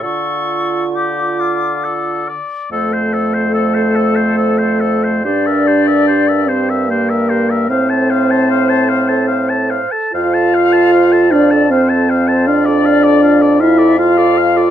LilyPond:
<<
  \new Staff \with { instrumentName = "Oboe" } { \time 3/4 \key d \minor \tempo 4 = 74 a'4 g'8 f'8 a'8 d''8 | \key f \major a'16 c''16 a'16 c''16 a'16 c''16 a'16 c''16 a'16 c''16 a'16 c''16 | c''16 e''16 c''16 e''16 c''16 e''16 c''16 e''16 c''16 e''16 c''16 e''16 | f''16 a''16 f''16 a''16 f''16 a''16 f''16 a''16 f''16 a''16 f''16 a''16 |
f''16 a''16 f''16 a''16 f''16 a''16 f''16 a''16 f''16 a''16 f''16 a''16 | \key d \minor f''16 d''16 f''16 d''16 f''16 d''16 f''16 d''16 f''16 d''16 f''16 d''16 | }
  \new Staff \with { instrumentName = "Flute" } { \time 3/4 \key d \minor cis'''4 d'''4. r8 | \key f \major a'2. | d''4. c''8 bes'4 | c''2~ c''8 r8 |
f''4. d''8 c''4 | \key d \minor d''4. e''8 f''4 | }
  \new Staff \with { instrumentName = "Clarinet" } { \time 3/4 \key d \minor f'2~ f'8 r8 | \key f \major c''16 a'16 c''16 a'16 c''16 a'16 c''16 a'16 c''16 a'16 c''16 a'16 | g'16 bes'16 g'16 bes'16 g'16 bes'16 g'16 bes'16 g'16 bes'16 g'16 bes'16 | c''16 a'16 c''16 a'16 c''16 a'16 c''16 a'16 c''16 a'16 c''16 a'16 |
c''16 a'16 c''16 a'16 c''16 a'16 c''16 a'16 c''16 a'16 c''16 a'16 | \key d \minor f'16 a'16 f'16 a'16 f'16 a'16 f'16 a'16 f'16 a'16 f'16 a'16 | }
  \new Staff \with { instrumentName = "French horn" } { \time 3/4 \key d \minor f'2~ f'8 r8 | \key f \major a2. | d'4. c'8 bes4 | c'2~ c'8 r8 |
f'4. d'8 c'4 | \key d \minor d'4. e'8 f'4 | }
  \new Staff \with { instrumentName = "Bassoon" } { \clef bass \time 3/4 \key d \minor d2~ d8 r8 | \key f \major f,2. | g,2. | a,2~ a,8 r8 |
f,2.~ | \key d \minor f,2. | }
>>